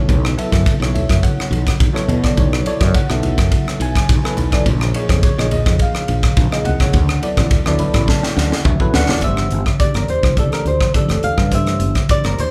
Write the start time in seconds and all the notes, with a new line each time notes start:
Already playing: F#3 B3 E4 A4 C#5
0.09 B1, kick, ride, low conga
0.25 cross-stick
0.37 F#3 B3 E4 A4 E5, ride
0.52 F#2, kick, cross-stick, ride, high conga
0.66 muted fretless electric bass stroke, kick, ride
0.80 B1 F#3 B3 E4 A4 C#5, cross-stick
0.94 E5, ride, low conga
1.09 F#2, kick, cross-stick, ride
1.23 F#5, kick, ride
1.37 muted fretless electric bass stroke, cross-stick
1.51 B1, ride, high conga
1.67 kick, cross-stick, ride
1.80 B1, kick, ride
1.93 F#3 B3 E4 A4 C#5, muted fretless electric bass stroke, cross-stick
2.08 B2, ride, high conga, low conga
2.23 F#3 B3 E4 A4 D5, kick, cross-stick, ride
2.37 B1 C#5, kick, ride, low conga
2.53 cross-stick
2.65 F#3 B3 E4 A4 C#5 D5, ride
2.81 F#2, kick, cross-stick, ride, high conga
2.94 F#5, muted fretless electric bass stroke, kick, ride
3.09 B1 F#3 B3 E4 A4 E5, cross-stick
3.23 ride, low conga
3.38 F#2, kick, cross-stick, ride
3.52 kick, ride
3.67 muted fretless electric bass stroke, cross-stick
3.80 B1 G#5, ride
3.95 kick, cross-stick, ride
4.09 B1, kick, ride
4.23 F#3 B3 E4 A4 B4, muted fretless electric bass stroke, cross-stick
4.37 B1, ride, low conga
4.51 F#3 B3 E4 A4 D5, kick, cross-stick, ride
4.66 A#1, kick, ride, low conga
4.81 cross-stick
4.94 F3 A#3 D#4 G#4 C#5, ride
5.09 F2, kick, cross-stick, ride, high conga
5.23 C#5, muted fretless electric bass stroke, kick, ride
5.38 A#1 F3 A#3 D#4 G#4 D#5, cross-stick
5.51 D#5, ride, low conga
5.66 F2, kick, cross-stick, ride
5.79 F5, kick, ride
5.95 muted fretless electric bass stroke, cross-stick
6.08 A#1, ride, high conga
6.23 kick, cross-stick, ride
6.37 A#1, kick, ride
6.51 F3 A#3 D#4 G#4 D#5, muted fretless electric bass stroke, cross-stick
6.65 C2 F#5, ride, high conga, low conga
6.80 F3 A#3 D#4 G#4 C#5, kick, cross-stick, ride
6.93 D2, kick, ride, low conga
7.09 cross-stick
7.22 F#3 B3 E4 A4 D5, ride
7.37 A1, kick, cross-stick, ride, high conga
7.51 muted fretless electric bass stroke, kick, ride, low conga
7.66 D2 F#3 B3 E4 A4 D5, cross-stick, high conga
7.79 B5, ride, high conga, low conga
7.94 A1, kick, cross-stick, ride
8.08 A5, kick, snare
8.23 G5, muted fretless electric bass stroke, snare
8.36 D2 F#5, snare, high conga
8.52 snare
8.65 D2 E5, kick, mid tom, high conga
8.79 F#3 B3 E4 A4 B4, muted fretless electric bass stroke, kick, high conga
8.94 D2 D5 F#5, snare, low conga
9.09 F#3 B3 E4 A4 D5, snare, low conga
9.21 G1 E3 A3 D4 G4 C5 E5, kick, closed hi-hat
9.37 cross-stick
9.51 G1, closed hi-hat
9.66 kick, cross-stick
9.79 E3 A3 D4 G4 D5, muted fretless electric bass stroke, kick, closed hi-hat
9.94 G1 A#4, cross-stick, closed hi-hat
10.08 C5, muted fretless electric bass stroke, closed hi-hat, low conga
10.23 C2, kick, cross-stick, high conga
10.36 E3 A3 D4 G4 A4 D5, kick, closed hi-hat
10.52 A#4, cross-stick, closed hi-hat
10.65 D2 C5, closed hi-hat
10.81 kick, cross-stick, high conga
10.93 E3 A3 D4 G4 A4 D5, muted fretless electric bass stroke, kick, closed hi-hat, high conga
11.08 F1, cross-stick, closed hi-hat, high conga
11.23 F5, muted fretless electric bass stroke, closed hi-hat, low conga
11.38 G2, kick, cross-stick
11.50 E3 A3 D4 G4 C5, kick, closed hi-hat
11.55 E5
11.67 cross-stick, closed hi-hat
11.80 G1, closed hi-hat
11.95 kick, cross-stick, closed hi-hat
12.09 E3 A3 D4 G4 C5 D5, muted fretless electric bass stroke, kick, closed hi-hat
12.24 G1 A#4, cross-stick, closed hi-hat
12.39 C5, muted fretless electric bass stroke, closed hi-hat, low conga